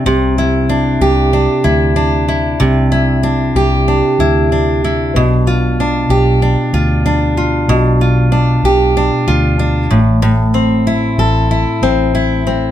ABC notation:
X:1
M:4/4
L:1/16
Q:"Swing 16ths" 1/4=94
K:C
V:1 name="Steel-string acoustic guitar"
C,2 E2 D2 G2 D2 E2 D2 E2 | C,2 E2 D2 G2 D2 E2 D2 E2 | B,,2 F2 D2 G2 D2 F2 D2 F2 | B,,2 F2 D2 G2 D2 F2 D2 A,,2 |
A,,2 C2 E2 A2 E2 C2 E2 C2 |]
V:2 name="Fingered electric bass" clef=bass
C,,6 C,,3 z D,,6 | C,,6 C,,3 z D,,6 | B,,,6 B,,,3 z D,,6 | B,,,6 B,,,3 z D,,4 A,,,2- |
A,,,6 A,,,3 z A,,,6 |]